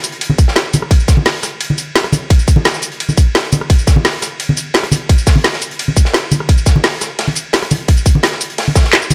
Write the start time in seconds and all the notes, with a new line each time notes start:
0.04 closed hi-hat, cabasa
0.12 closed hi-hat
0.21 closed hi-hat, ride
0.30 high conga
0.38 kick, closed hi-hat, cabasa
0.48 snare
0.56 snare, closed hi-hat, ride
0.73 closed hi-hat, high conga, cabasa
0.82 cross-stick
0.91 kick, closed hi-hat, ride
1.00 cabasa
1.08 kick, snare, closed hi-hat, cabasa
1.17 high conga
1.25 snare, closed hi-hat, open hi-hat, ride
1.43 cross-stick, snare, closed hi-hat, cabasa
1.60 closed hi-hat, ride
1.70 high conga
1.78 closed hi-hat, cabasa
1.95 snare, closed hi-hat, ride
2.04 cross-stick, closed hi-hat
2.13 closed hi-hat, high conga, cabasa
2.30 kick, closed hi-hat, ride
2.39 cabasa
2.48 kick, closed hi-hat, cabasa
2.56 high conga
2.65 snare, closed hi-hat, ride
2.74 snare, cabasa
2.82 closed hi-hat, cabasa
2.92 closed hi-hat
3.00 closed hi-hat, ride
3.09 high conga, cabasa
3.17 kick, closed hi-hat, cabasa
3.35 snare, closed hi-hat, ride
3.45 closed hi-hat
3.52 closed hi-hat, high conga, cabasa
3.61 cross-stick
3.70 kick, closed hi-hat, ride
3.79 cabasa
3.87 kick, snare, closed hi-hat, cabasa
3.96 high conga
4.05 snare, closed hi-hat, open hi-hat, ride
4.22 cross-stick, snare, closed hi-hat, cabasa
4.40 closed hi-hat, ride
4.49 high conga
4.57 closed hi-hat, cabasa
4.74 snare, closed hi-hat, ride
4.83 cross-stick, closed hi-hat
4.92 closed hi-hat, high conga, cabasa
5.09 kick, closed hi-hat, ride
5.18 cabasa
5.27 kick, snare, closed hi-hat, open hi-hat, cabasa
5.36 high conga
5.44 snare, closed hi-hat, open hi-hat, ride
5.53 snare
5.62 closed hi-hat, cabasa
5.71 closed hi-hat
5.79 closed hi-hat, ride
5.88 high conga
5.97 kick, closed hi-hat, cabasa
6.05 snare
6.14 snare, closed hi-hat, ride
6.31 closed hi-hat, high conga, cabasa
6.40 cross-stick
6.49 kick, closed hi-hat, ride
6.58 cabasa
6.66 kick, snare, closed hi-hat, cabasa
6.76 high conga
6.83 snare, closed hi-hat, open hi-hat, ride
7.01 cross-stick, snare, closed hi-hat, cabasa
7.19 snare, closed hi-hat, open hi-hat, ride
7.28 high conga
7.35 closed hi-hat, cabasa
7.53 snare, closed hi-hat, ride
7.62 cross-stick, closed hi-hat
7.71 closed hi-hat, high conga, cabasa
7.88 kick, closed hi-hat, ride
7.97 cabasa
8.06 kick, closed hi-hat, cabasa
8.15 high conga
8.23 snare, closed hi-hat, ride
8.32 snare
8.41 closed hi-hat, cabasa
8.50 closed hi-hat
8.58 snare, closed hi-hat, open hi-hat, ride
8.68 high conga
8.75 kick, snare, closed hi-hat, open hi-hat, cabasa
8.84 snare
8.93 snare, clap, closed hi-hat, ride
9.02 cabasa
9.10 closed hi-hat, high conga, cabasa